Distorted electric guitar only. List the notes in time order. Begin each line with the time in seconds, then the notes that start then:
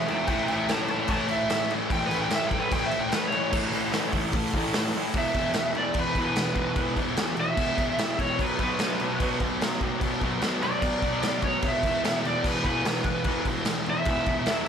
Already playing: E2 B2
0.07 E3
0.12 B2
0.28 A2 E3
0.33 A3
0.48 A3
0.53 E3
0.68 A2 E3
0.73 A3
1.08 A2 E3
1.13 A3
1.29 A3
1.33 E3
1.50 A2 E3
1.55 A3
1.70 A3
1.74 E3
1.90 A2 E3
1.95 A3
2.11 A3
2.15 E3
2.30 A2 E3
2.34 A3
2.71 A2 E3
2.75 A3
2.91 A3
2.96 E3
3.10 A2 E3
3.15 A3
3.31 A3
3.35 E3
3.52 A2 E3 A3
3.73 A2 E3 A3
3.92 A2 E3 A3
4.13 A2 E3 A3
4.33 A2 E3 A3
4.55 A2 E3 A3
4.75 A2 E3 A3
4.96 A2 E3 A3
5.16 E2 B2 E3
5.36 E2 B2 E3
5.56 E2 B2 E3
5.76 E2 B2 E3
5.96 E2 B2 E3
6.16 E2 B2 E3
6.37 E2 B2 E3
6.55 E2 B2 E3
6.77 E2 B2 E3
6.97 E2 B2 E3
7.17 E2 B2 E3
7.36 E2 B2 E3
7.56 E2 B2 E3
7.77 E2 B2 E3
7.97 E2 B2 E3
8.18 E2 B2 E3
8.40 B2 F#3 B3
8.61 B2 F#3 B3
8.81 B2 F#3 B3
9.01 B2 F#3 B3
9.22 B2 F#3 B3
9.40 B2 F#3 B3
9.62 B2 F#3 B3
9.82 B2 F#3 B3
10.02 B2 F#3 B3
10.22 B2 F#3 B3
10.41 B2 F#3 B3
10.63 B2 F#3 B3
10.83 B2 F#3 B3
11.03 B2 F#3 B3
11.24 B2 F#3 B3
11.44 B2 F#3 B3
11.64 E2 B2 E3
11.84 E2 B2 E3
12.04 E2 B2 E3
12.24 E2 B2 E3
12.44 E2 B2 E3
12.64 E2 B2 E3
12.84 E2 B2 E3
13.06 E2 B2 E3
13.26 E2 B2 E3
13.47 E2 B2 E3
13.67 E2 B2 E3
13.86 E2 B2 E3
14.07 E2 B2 E3
14.27 E2 B2 E3
14.48 E2 B2 E3